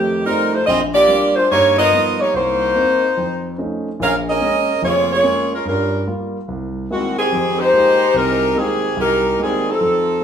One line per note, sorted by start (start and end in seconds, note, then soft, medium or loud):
0.00 0.21 F2 medium
0.00 0.22 D#3 medium
0.00 0.21 A3 medium
0.00 0.22 G4 medium
0.26 0.56 F3 soft
0.26 0.52 G3 medium
0.26 0.56 A3 soft
0.26 0.52 C4 medium
0.26 0.52 D#4 medium
0.26 0.56 D#4 soft
0.26 0.52 A#4 medium
0.53 0.68 A3 medium
0.53 0.68 D#4 medium
0.53 0.66 F4 medium
0.53 0.68 C5 medium
0.67 1.04 A#1 medium
0.67 0.80 C4 medium
0.67 0.80 F4 medium
0.67 0.79 G#4 medium
0.67 0.79 D#5 medium
0.94 1.33 A#3 medium
0.94 1.34 F4 medium
0.94 1.33 G4 loud
0.94 1.34 D5 loud
1.08 1.38 G3 soft
1.08 1.38 A#3 soft
1.08 1.38 D4 soft
1.36 1.51 G#3 medium
1.36 1.51 D4 medium
1.36 1.51 F4 medium
1.36 1.51 C5 medium
1.51 1.87 G2 medium
1.51 1.77 A#3 medium
1.51 1.77 D#4 medium
1.51 1.77 G4 medium
1.51 1.77 C#5 loud
1.78 2.17 B3 medium
1.78 2.17 F4 medium
1.78 2.18 A#4 medium
1.78 2.17 D#5 loud
1.93 2.22 F3 soft
1.93 2.22 G3 soft
1.93 2.22 B3 soft
1.93 2.22 D#4 medium
2.21 2.34 A#3 medium
2.21 2.34 D#4 medium
2.21 2.35 G4 medium
2.21 2.34 C#5 medium
2.34 2.70 C2 soft
2.34 3.14 A#3 medium
2.34 3.55 D#4 medium
2.34 3.14 F#4 medium
2.34 3.55 C5 medium
2.76 3.05 A#3 soft
2.76 3.05 C4 soft
2.76 3.05 D#4 soft
3.17 3.53 F2 medium
3.58 3.87 F3 soft
3.58 3.88 A3 soft
3.58 3.87 C#4 soft
3.58 3.88 D#4 soft
3.99 4.36 A#1 medium
3.99 4.36 A#2 medium
3.99 4.14 C#4 medium
3.99 4.15 G#4 medium
3.99 4.15 A#4 medium
4.03 4.15 F5 medium
4.29 4.80 C#4 medium
4.29 4.80 G#4 medium
4.29 4.80 A#4 medium
4.29 4.80 D#5 medium
4.41 4.70 G#3 soft
4.41 4.70 A#3 soft
4.41 4.70 C#4 soft
4.82 5.19 F1 medium
4.82 5.18 F2 medium
4.82 5.11 A#3 medium
4.82 5.11 F4 medium
4.82 5.12 G#4 medium
4.82 5.11 C#5 medium
5.13 5.51 A#3 medium
5.13 5.51 F4 medium
5.13 5.51 G#4 medium
5.13 5.50 C#5 medium
5.22 5.52 G#3 soft
5.22 5.53 A#3 soft
5.22 5.53 C#4 soft
5.55 5.67 G#3 medium
5.55 5.67 C#4 medium
5.55 5.67 F4 medium
5.55 5.67 A#4 medium
5.65 6.02 G2 medium
5.65 6.06 G3 medium
5.65 6.06 C#4 medium
5.65 6.05 F4 medium
5.65 6.06 A#4 medium
6.07 6.36 G3 soft
6.07 6.36 A#3 soft
6.07 6.36 F4 soft
6.48 6.85 C2 medium
6.90 7.18 D#3 medium
6.90 7.19 G#3 soft
6.90 7.18 G#3 medium
6.90 7.19 A#3 soft
6.90 7.20 C4 soft
6.90 7.18 C4 medium
6.90 7.20 E4 soft
6.90 7.17 F#4 medium
7.19 7.57 D#3 medium
7.19 7.57 C4 medium
7.19 7.57 G4 medium
7.19 7.57 G#4 medium
7.32 7.68 F2 medium
7.59 8.15 G#3 loud
7.59 8.15 D#4 loud
7.59 8.15 G4 medium
7.59 8.15 C5 loud
7.73 8.02 G#3 soft
7.73 8.02 A#3 soft
7.73 8.02 D#4 soft
7.73 8.02 F4 soft
7.73 8.03 G4 medium
8.14 8.50 C2 medium
8.14 8.50 C3 medium
8.14 8.57 G#3 loud
8.14 8.57 D#4 medium
8.14 8.57 G4 medium
8.14 8.57 A#4 loud
8.55 8.99 D#3 medium
8.55 8.85 G#3 soft
8.55 8.85 A#3 soft
8.55 8.99 C4 medium
8.55 8.85 D#4 soft
8.55 8.85 F4 soft
8.55 8.85 G4 soft
8.55 8.99 G4 medium
8.55 8.99 G#4 medium
8.97 9.33 C2 medium
9.01 9.38 G#3 medium
9.01 9.38 D#4 medium
9.01 9.38 G4 medium
9.01 9.38 A#4 medium
9.39 9.68 D#3 medium
9.39 9.68 G3 medium
9.39 9.68 G#3 soft
9.39 9.68 A#3 soft
9.39 9.68 C4 medium
9.39 9.68 D#4 soft
9.39 9.68 F4 soft
9.39 9.68 G4 soft
9.43 9.69 G#4 medium
9.70 10.24 F3 medium
9.70 10.24 C4 medium
9.70 10.24 D#4 medium
9.70 10.24 A4 medium
9.80 10.17 F2 medium